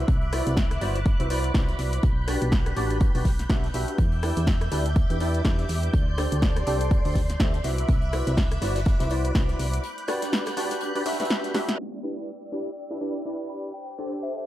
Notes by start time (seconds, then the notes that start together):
Already playing: E5 B5 D6 F#6
0.08 C2, kick, closed hi-hat
0.21 closed hi-hat
0.32 E4 F#4 B4 C5 D5, cross-stick, closed hi-hat, open hi-hat
0.47 C2, closed hi-hat
0.56 kick, snare, closed hi-hat
0.71 cross-stick, closed hi-hat
0.81 G1 E4 F#4 B4 C5 D5, closed hi-hat, open hi-hat
0.96 closed hi-hat
1.06 kick, closed hi-hat
1.20 C2 E4 F#4 B4 C5 E5, closed hi-hat
1.30 E4 F#4 B4 C5 D5, closed hi-hat, open hi-hat
1.44 closed hi-hat
1.54 C2 E4 F#4 B4 C5, kick, snare, closed hi-hat
1.69 snare, closed hi-hat
1.79 C2, snare, closed hi-hat, open hi-hat
1.93 closed hi-hat
2.03 B1 F#6 G6, kick, closed hi-hat
2.27 D4 F#4 G4 B4 D5, cross-stick, snare, closed hi-hat, open hi-hat
2.42 B1, closed hi-hat
2.52 kick, snare, closed hi-hat
2.66 cross-stick, closed hi-hat
2.76 A1 D4 F#4 G4 B4 D5, closed hi-hat, open hi-hat
2.91 closed hi-hat
3.01 kick, closed hi-hat
3.15 B1 D4 F#4 G4 B4 D5, open hi-hat
3.25 kick, snare, closed hi-hat, open hi-hat
3.39 snare, closed hi-hat
3.50 B1 D4 F#4 G4 B4 E5, kick, snare, closed hi-hat
3.64 snare, closed hi-hat
3.74 B1 D4 F#4 G4 B4 E5, snare, closed hi-hat, open hi-hat
3.88 closed hi-hat
3.98 E2 E5 D6, kick, closed hi-hat
4.12 closed hi-hat
4.23 D4 E4 G4 B4 D5, cross-stick, closed hi-hat, open hi-hat
4.37 E2, closed hi-hat
4.47 kick, snare, closed hi-hat
4.61 cross-stick, closed hi-hat
4.71 D2 D4 E4 G4 B4 D5, closed hi-hat, open hi-hat
4.86 closed hi-hat
4.96 kick, closed hi-hat
5.10 E2 D4 E4 G4 B4 E5, closed hi-hat
5.20 D4 E4 G4 B4 D5, closed hi-hat, open hi-hat
5.34 closed hi-hat
5.45 E2 D4 E4 G4 B4 D5, kick, snare, closed hi-hat
5.59 snare, closed hi-hat
5.69 E2, snare, closed hi-hat, open hi-hat
5.83 closed hi-hat
5.93 D2 D5 C6, kick, closed hi-hat
6.18 D4 G4 A4 C5 D5, cross-stick, snare, closed hi-hat, open hi-hat
6.32 D2, closed hi-hat
6.42 kick, snare, closed hi-hat
6.56 cross-stick, closed hi-hat
6.67 C2 D4 G4 A4 C5 D5, closed hi-hat, open hi-hat
6.81 closed hi-hat
6.91 kick, closed hi-hat
7.05 D2 D4 G4 A4 C5 D5, open hi-hat
7.15 kick, snare, closed hi-hat, open hi-hat
7.29 snare, closed hi-hat
7.40 D2 D4 G4 A4 C5 E5, kick, snare, closed hi-hat
7.54 snare, closed hi-hat
7.64 C2 E4 F#4 B4 C5 E5 B5 D6 F#6, snare, closed hi-hat, open hi-hat
7.78 closed hi-hat
7.89 C2, kick, closed hi-hat
8.02 closed hi-hat
8.13 E4 F#4 B4 C5 D5, cross-stick, closed hi-hat, open hi-hat
8.27 C2, closed hi-hat
8.37 kick, snare, closed hi-hat
8.52 cross-stick, closed hi-hat
8.61 G1 E4 F#4 B4 C5 D5, snare, closed hi-hat, open hi-hat
8.76 snare, closed hi-hat
8.85 kick, snare, closed hi-hat
9.00 C2 E4 F#4 B4 C5 E5, snare, closed hi-hat
9.10 E4 F#4 B4 C5 D5, closed hi-hat, open hi-hat
9.25 closed hi-hat
9.35 C2 E4 F#4 B4 C5 D5, kick, snare, closed hi-hat
9.49 snare, closed hi-hat
9.59 C2, snare, closed hi-hat, open hi-hat
9.74 closed hi-hat
9.84 F#6 G6, closed hi-hat
9.98 closed hi-hat
10.08 D4 F#4 G4 B4 D5, cross-stick, snare, closed hi-hat, open hi-hat
10.22 snare, closed hi-hat
10.32 snare, closed hi-hat
10.46 cross-stick, snare, closed hi-hat
10.57 D4 F#4 G4 B4 D5, snare, closed hi-hat, open hi-hat
10.71 snare, closed hi-hat
10.81 closed hi-hat
10.95 D4 F#4 G4 B4 D5, open hi-hat
11.06 D4 F#4 G4 B4 E5, snare, closed hi-hat, open hi-hat
11.12 snare, closed hi-hat
11.20 D4 F#4 G4 B4 E5, snare, closed hi-hat
11.24 snare, closed hi-hat
11.30 snare, closed hi-hat
11.44 snare, closed hi-hat
11.54 D4 F#4 G4 B4 E5, snare, closed hi-hat, open hi-hat
11.69 snare, closed hi-hat
11.79 D5 G5 E6, crash
12.03 D4 E4 G4 B4 D5
12.17 closed hi-hat
12.42 closed hi-hat
12.52 D4 E4 G4 B4 D5
12.66 closed hi-hat
12.90 D4 E4 G4 B4 E5, closed hi-hat
13.01 D4 E4 G4 B4 D5
13.15 closed hi-hat
13.25 D4 E4 G4 B4 D5
13.39 closed hi-hat
13.50 B5
13.64 closed hi-hat
13.74 C5 G5 D6
13.88 closed hi-hat
13.98 D4 G4 A4 C5 D5
14.12 closed hi-hat
14.23 E5
14.37 E5, closed hi-hat